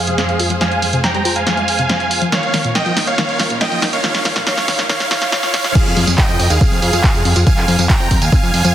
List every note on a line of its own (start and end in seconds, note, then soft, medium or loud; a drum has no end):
0.00 2.29 F2 medium
0.00 2.29 F3 medium
0.00 2.29 G#3 medium
0.00 0.52 G#4 medium
0.00 2.29 G#4 medium
0.00 2.29 C5 medium
0.00 0.52 F5 loud
0.00 riser medium
0.07 0.13 C3 medium
0.07 closed hi-hat medium
0.18 0.27 C4 medium
0.18 snare medium
0.18 closed hi-hat medium
0.29 closed hi-hat soft
0.39 0.48 F4 medium
0.39 open hi-hat medium
0.50 0.54 F3 medium
0.50 closed hi-hat medium
0.61 0.64 F3 medium
0.61 0.97 F5 medium
0.61 0.97 G#5 loud
0.61 snare medium
0.61 closed hi-hat medium
0.72 closed hi-hat soft
0.82 0.86 F3 medium
0.82 open hi-hat loud
0.93 0.99 C3 medium
0.93 closed hi-hat medium
1.04 1.31 G5 medium
1.04 1.31 A#5 loud
1.04 snare medium
1.04 closed hi-hat medium
1.15 1.20 G3 loud
1.15 closed hi-hat soft
1.25 1.34 F4 medium
1.25 open hi-hat loud
1.36 2.24 F5 medium
1.36 2.24 G#5 loud
1.36 closed hi-hat medium
1.47 1.50 F3 medium
1.47 snare medium
1.47 closed hi-hat medium
1.57 1.63 G#3 medium
1.57 closed hi-hat soft
1.68 open hi-hat loud
1.79 1.84 C3 medium
1.79 closed hi-hat medium
1.89 1.98 C4 medium
1.89 snare medium
1.89 closed hi-hat medium
2.00 closed hi-hat soft
2.11 2.19 F4 medium
2.11 open hi-hat loud
2.22 2.25 F3 medium
2.22 closed hi-hat medium
2.32 5.72 D#2 medium
2.32 2.36 D#3 medium
2.32 5.72 D#3 medium
2.32 5.72 A#3 medium
2.32 5.72 F4 medium
2.32 5.72 A#4 loud
2.32 2.69 C#5 medium
2.32 2.69 F5 medium
2.32 snare medium
2.32 closed hi-hat medium
2.43 closed hi-hat soft
2.54 2.57 D#3 medium
2.54 snare medium
2.54 open hi-hat loud
2.64 2.70 A#2 medium
2.64 closed hi-hat medium
2.75 3.02 D#5 medium
2.75 3.02 G5 medium
2.75 snare medium
2.75 closed hi-hat soft
2.86 2.92 F3 loud
2.86 closed hi-hat soft
2.97 3.05 D#4 medium
2.97 snare medium
2.97 open hi-hat loud
3.07 3.16 C#5 medium
3.07 3.16 F5 medium
3.07 closed hi-hat soft
3.18 3.21 D#3 medium
3.18 3.54 C#5 medium
3.18 3.54 F5 loud
3.18 snare medium
3.18 closed hi-hat soft
3.29 closed hi-hat soft
3.39 3.43 D#3 medium
3.39 snare medium
3.39 open hi-hat loud
3.50 3.56 A#2 medium
3.50 closed hi-hat soft
3.61 3.88 D#5 medium
3.61 3.88 G5 medium
3.61 snare medium
3.61 closed hi-hat medium
3.72 3.77 F3 loud
3.72 closed hi-hat soft
3.82 3.91 D#4 medium
3.82 snare medium
3.82 open hi-hat loud
3.93 4.02 C#5 medium
3.93 4.02 F5 medium
3.93 closed hi-hat medium
4.04 4.07 D#3 medium
4.04 4.40 C#5 medium
4.04 4.40 F5 loud
4.04 snare medium
4.04 closed hi-hat soft
4.14 snare medium
4.14 closed hi-hat soft
4.25 4.29 D#3 medium
4.25 snare medium
4.25 open hi-hat loud
4.36 4.42 A#2 medium
4.36 snare medium
4.36 closed hi-hat soft
4.47 4.50 D#3 medium
4.47 4.83 C#5 medium
4.47 4.83 F5 loud
4.47 snare loud
4.47 closed hi-hat medium
4.57 snare medium
4.57 closed hi-hat soft
4.68 4.71 D#3 medium
4.68 snare loud
4.68 open hi-hat loud
4.79 4.84 A#2 medium
4.79 snare medium
4.79 closed hi-hat soft
4.89 4.93 D#3 medium
4.89 5.09 C#5 medium
4.89 5.09 F5 loud
4.89 snare loud
4.89 closed hi-hat medium
4.89 swell medium
5.00 snare medium
5.00 closed hi-hat soft
5.11 5.14 D#3 medium
5.11 5.31 C#5 medium
5.11 5.31 F5 loud
5.11 snare loud
5.11 open hi-hat loud
5.22 snare medium
5.22 closed hi-hat medium
5.32 5.36 D#3 medium
5.32 5.52 C#5 medium
5.32 5.52 F5 loud
5.32 snare loud
5.32 closed hi-hat soft
5.43 snare loud
5.43 closed hi-hat soft
5.54 5.57 D#3 medium
5.54 5.73 C#5 medium
5.54 5.73 F5 loud
5.54 snare loud
5.54 open hi-hat loud
5.64 snare loud
5.64 closed hi-hat medium
5.75 5.81 F3 medium
5.75 6.11 G#4 medium
5.75 kick loud
5.75 closed hi-hat medium
5.75 crash loud
5.75 tambourine medium
5.86 5.94 F2 medium
5.86 closed hi-hat soft
5.86 tambourine soft
5.97 6.05 F2 loud
5.97 6.00 F3 loud
5.97 open hi-hat loud
6.07 6.16 F2 medium
6.07 6.11 F3 loud
6.07 closed hi-hat medium
6.07 tambourine medium
6.18 6.45 D#5 medium
6.18 6.45 G5 loud
6.18 kick loud
6.18 clap loud
6.18 closed hi-hat medium
6.18 tambourine medium
6.29 6.37 F2 medium
6.29 6.34 F3 medium
6.29 closed hi-hat soft
6.29 tambourine soft
6.39 6.48 F2 loud
6.39 6.45 C4 medium
6.39 open hi-hat loud
6.50 6.59 D#2 loud
6.50 7.38 G#4 medium
6.50 7.38 F5 loud
6.50 closed hi-hat medium
6.50 tambourine medium
6.61 6.67 C4 medium
6.61 kick loud
6.61 closed hi-hat medium
6.61 tambourine soft
6.72 6.80 F2 medium
6.72 6.80 F3 medium
6.72 closed hi-hat soft
6.72 tambourine soft
6.82 6.91 F2 loud
6.82 open hi-hat loud
6.93 7.02 F2 medium
6.93 6.96 F3 loud
6.93 closed hi-hat medium
6.93 tambourine medium
7.04 7.07 F4 loud
7.04 kick loud
7.04 clap loud
7.04 closed hi-hat medium
7.04 tambourine medium
7.14 7.23 F2 medium
7.14 closed hi-hat soft
7.14 tambourine soft
7.25 7.34 F2 loud
7.25 7.31 C4 medium
7.25 open hi-hat medium
7.36 7.44 F2 medium
7.36 7.39 F4 medium
7.36 closed hi-hat medium
7.36 tambourine medium
7.47 7.52 F3 medium
7.47 7.83 F5 medium
7.47 7.83 G#5 loud
7.47 kick loud
7.47 closed hi-hat medium
7.47 tambourine soft
7.57 7.66 F2 medium
7.57 clap soft
7.57 closed hi-hat soft
7.57 tambourine soft
7.68 7.77 F2 loud
7.68 7.71 F3 loud
7.68 open hi-hat loud
7.79 7.87 F2 medium
7.79 7.82 F3 loud
7.79 closed hi-hat medium
7.79 tambourine medium
7.89 8.17 G5 medium
7.89 8.17 A#5 loud
7.89 kick loud
7.89 clap loud
7.89 closed hi-hat medium
8.00 8.09 F2 medium
8.00 8.06 F3 medium
8.00 closed hi-hat soft
8.00 tambourine soft
8.11 8.19 F2 loud
8.11 8.17 C4 medium
8.11 kick medium
8.11 open hi-hat loud
8.22 8.30 D#2 loud
8.22 8.75 F5 medium
8.22 8.75 G#5 loud
8.22 closed hi-hat medium
8.22 tambourine medium
8.32 8.38 C4 medium
8.32 kick loud
8.32 closed hi-hat medium
8.32 tambourine soft
8.43 8.52 F2 medium
8.43 8.52 F3 medium
8.43 closed hi-hat soft
8.43 tambourine soft
8.54 8.62 F2 loud
8.54 open hi-hat loud
8.65 8.73 F2 medium
8.65 8.68 F3 loud
8.65 closed hi-hat medium
8.65 tambourine medium